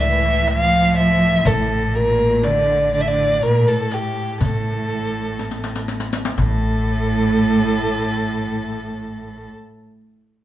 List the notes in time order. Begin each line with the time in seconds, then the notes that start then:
Already playing: C#2 A2
0.00 E3 E5
0.47 F3 F5, riq, darbuka tek
0.97 E5
1.45 A1 A2 A4, riq, darbuka dum
1.94 A#2 A#4
2.44 D3 D5, riq, darbuka tek
2.93 D3 D5, riq
3.01 E5
3.08 D3 D5
3.43 A#2 A#4
3.68 A2 A4
3.91 G4, riq, darbuka tek
4.41 A1 A2 A4, riq, darbuka dum
4.90 riq
5.39 riq, darbuka tek
5.51 riq
5.64 riq, darbuka ka
5.76 riq
5.88 riq, darbuka tek
6.00 riq
6.13 riq, darbuka ka
6.25 riq
6.38 A1 A2 A4, riq, darbuka dum